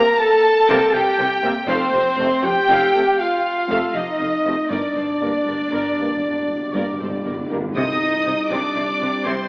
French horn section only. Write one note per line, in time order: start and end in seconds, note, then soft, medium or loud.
0.00 0.19 A#4 loud
0.20 0.94 A4 loud
0.92 1.51 G4 loud
1.68 2.42 C4 loud
2.44 3.19 G4 loud
3.20 3.95 F4 loud
3.94 4.71 D#4 medium
4.72 7.47 D4 medium
7.77 8.47 D#4 medium
8.50 9.25 D4 medium
9.25 9.48 C4 medium